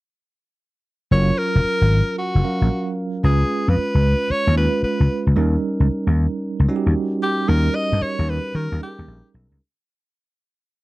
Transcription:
1.11 F#1 F#3 C#4 F4 A#4 C#5
1.38 A#4
1.55 F1
1.64 muted slap bass stroke
1.81 G#1
2.18 F#4
2.35 F#1
2.44 F#3 C#4 A#4 F5
2.61 A#1
3.23 C#2 G#3 C#4 F4 G#4 B4
3.68 F2 B4
3.77 muted slap bass stroke
3.95 C#2
4.30 C#5, muted slap bass stroke
4.47 D#2
4.56 G#3 C#4 F4 B4
4.83 B4, muted slap bass stroke
5.00 C#2
5.27 C#2
5.36 D#2 G3 C#4 D#4 A#4
5.80 C#2
5.89 muted slap bass stroke
6.07 D#2
6.60 C#2
6.69 G3 C#4 D#4 F#4
6.76 G4
6.86 D#2
7.23 G4
7.48 D#2 G3 C#4 D#4 A#4
7.75 D#5
7.92 G2
8.01 C#5, muted slap bass stroke
8.19 D#2
8.29 B4
8.55 D#3 A#4
8.72 D#2
8.81 G3 C#4 D#4 G4 G#4
8.88 A#4
8.99 D#2
9.08 A#1
9.34 B1
9.51 C#2

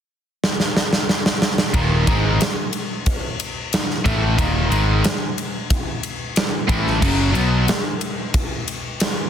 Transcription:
0.44 snare
0.60 snare
0.77 snare
0.93 snare
1.09 snare
1.26 snare
1.42 snare
1.58 snare
1.74 D#1 D#2 A#2 D#3, kick, ride
2.07 G#1 G#2 D#3 G#3, kick, ride
2.41 snare, ride
2.73 ride
3.06 kick, ride
3.40 ride
3.73 snare, ride
3.91 snare
4.05 A1 A2 E3 A3, kick, ride
4.36 D#2 A#2 D#3, kick, ride
4.70 G#1 G#2 D#3 G#3, ride
5.04 snare, ride
5.38 ride
5.70 kick, ride
6.03 ride
6.36 snare, ride
6.68 A1 A2 E3 A3, kick, ride
6.87 snare
7.01 F#1 F#2 C#3 F#3, kick, crash
7.33 B1 B2 F#3 B3, ride
7.68 snare, ride
8.01 ride
8.34 kick, ride
8.68 ride
9.00 snare, ride

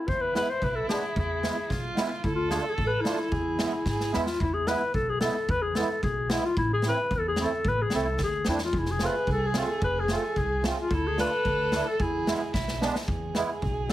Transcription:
0.08 E2 E4 C5, kick
0.21 B4
0.34 G#3 B3 E4 B4, snare
0.49 C5
0.62 B1 B4, kick
0.75 A4
0.87 G#3 B3 D4 G#4, snare
1.16 E2 G#4, kick
1.41 G#3 B3 E4, snare
1.70 B1 F4, kick, snare
1.95 G#3 B3 E4, snare
2.23 D2 E4 A4, kick
2.35 F4
2.50 A3 D4 F4 G#4, snare
2.62 A4
2.69 G#4
2.74 A4, kick
2.78 A1
2.87 B4
3.01 A3 D4 E4 F4
3.05 snare
3.32 E2 G#4, kick
3.58 G#3 B3 E4, snare
3.86 G#2 G#4, kick, snare
4.00 snare
4.12 E2 G#3 B3 E4, snare
4.26 F4, snare
4.40 E2 E4, kick
4.54 G#4
4.67 G#3 B3 E4 B4, snare
4.94 B1 A4, kick
5.10 G#4
5.21 G#3 B3 E4 A4, snare
5.48 E2 B4, kick
5.62 G#4
5.75 G#3 B3 E4 A4, snare
6.03 B1 G#4, kick
6.29 G#3 B3 E4, snare
6.45 F4
6.57 A1 E4, kick
6.73 G#4
6.82 A3 C4 E4, snare
6.88 B4
7.11 E2, kick
7.15 A4
7.28 G#4
7.36 A3 C4 E4, snare
7.44 A4
7.65 A1 B4, kick
7.82 G#4
7.90 C2 A3 C4 E4, snare
7.96 A4
8.18 D2, kick, snare
8.23 G#4
8.45 E2 A3 C4 D4, snare
8.49 E4
8.58 snare
8.65 F4
8.73 F1 G#4, kick
8.78 E4
8.85 snare
8.91 G#4
8.99 A3 C4 F4, snare
9.05 B4
9.27 C2, kick
9.32 A4
9.46 G#4
9.54 A3 C4 F4, snare
9.59 A4
9.82 F1 B4, kick
10.00 G#4
10.08 A3 C4 F4, snare
10.13 A4
10.36 C2 G#4, kick
10.63 A3 C4 F4, snare
10.81 F4
10.89 D2 A4, kick
10.94 E4
11.07 G#4
11.18 A3 D4 F4 B4, snare
11.45 D2, kick
11.72 A3 D4 E4, snare
11.88 A4
12.00 E2 E4 G#4, kick
12.27 G#3 B3 E4, snare
12.54 B1 E4, kick, snare
12.68 snare
12.81 G#3 B3 D4, snare
12.95 snare
13.07 E2 G#4, kick
13.35 G#3 B3 E4, snare
13.62 B1, kick
13.89 G#3 B3, snare

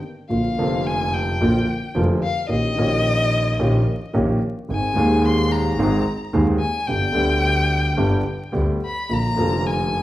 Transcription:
0.29 A#1 A#2 D3 F3 A#3 F4 F5
0.57 F1 F2 D3 F3 A#3 F4
0.86 G#5
1.14 G5
1.41 A#1 A#2 D3 F3 A#3 F4
1.95 F1 F2 D3 F3 A#3 F4
2.23 F5
2.48 A#1 A#2 D#3 A#3 C#4 G4 D#5
2.76 A#1 A#2 D#3 A#3 C#4
2.80 G4
3.59 A#1 A#2 D#3 A#3 C#4 G4
4.13 A#1 A#2 D#3 A#3 C#4 G4
4.69 G#1 G#2 D#3 G#3 C4 G#4
4.73 G#5
4.94 D#1 D#2 D#3 G#3 C4
4.99 G#4
5.25 C6
5.51 A#5
5.77 G#1 G#2 D#3 G#3 C4 G#4
6.33 D#1 D#2 D#3 G#3 C4 G#4
6.60 G#5
6.87 G1 G2 D3 G3 B3 G4 G5
7.12 D2 D3 G3 B3
7.16 G4
7.97 G1 G2 D3 G3 B3 G4
8.52 D2 D3 G3 B3 G4
8.85 B5
9.09 A#1 A#2 D3 F3 A#3 F4
9.13 A#5
9.36 F1 F2 D3 F3 A#3 F4
9.67 G#5

